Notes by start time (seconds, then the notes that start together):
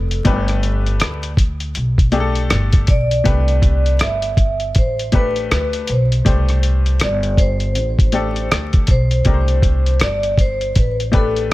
Already playing: F1
0.11 closed hi-hat
0.25 G1 A3 D4 G4 B4, kick, closed hi-hat
0.48 cross-stick, closed hi-hat
0.63 closed hi-hat
0.86 closed hi-hat
1.00 D2, cross-stick, closed hi-hat
1.23 closed hi-hat
1.37 kick, closed hi-hat
1.60 closed hi-hat
1.75 B1, closed hi-hat
1.98 kick, closed hi-hat
2.12 A3 D4 G4 G#4, closed hi-hat
2.20 A4
2.35 closed hi-hat
2.50 G1, cross-stick, closed hi-hat
2.73 kick, closed hi-hat
2.87 B1 D5, kick, closed hi-hat
3.11 closed hi-hat
3.24 C2 A3 D4 G4 B4, kick, closed hi-hat
3.48 closed hi-hat
3.62 kick, closed hi-hat
3.86 closed hi-hat
3.99 G1 E5, cross-stick, closed hi-hat
4.22 closed hi-hat
4.37 kick, closed hi-hat
4.60 closed hi-hat
4.75 A1 C5, kick, closed hi-hat
4.99 closed hi-hat
5.12 A3 D4 G4 B4, kick, closed hi-hat
5.36 closed hi-hat
5.51 D2, cross-stick, closed hi-hat
5.73 closed hi-hat
5.87 B1, closed hi-hat
5.92 C5
6.12 closed hi-hat
6.25 C2 A3 D4 G4 C5, kick, closed hi-hat
6.49 cross-stick, closed hi-hat
6.63 closed hi-hat
6.86 closed hi-hat
7.00 G1 D5, cross-stick, closed hi-hat
7.23 closed hi-hat
7.37 C5, kick, closed hi-hat
7.60 closed hi-hat
7.75 A1, closed hi-hat
7.99 kick, closed hi-hat
8.12 A3 D4 G4 A4, closed hi-hat
8.36 closed hi-hat
8.51 D2, cross-stick, closed hi-hat
8.73 kick, closed hi-hat
8.87 B1 C5, kick, closed hi-hat
9.11 closed hi-hat
9.25 C2 A3 D4 G4 A#4, kick, closed hi-hat
9.34 C5
9.48 closed hi-hat
9.62 kick, closed hi-hat
9.86 closed hi-hat
10.00 G1 D5, cross-stick, closed hi-hat
10.23 closed hi-hat
10.38 C5, kick, closed hi-hat
10.61 closed hi-hat
10.75 A1 B4, kick, closed hi-hat
11.00 closed hi-hat
11.12 A3 D4 G4 B4, kick, closed hi-hat
11.16 A4
11.36 closed hi-hat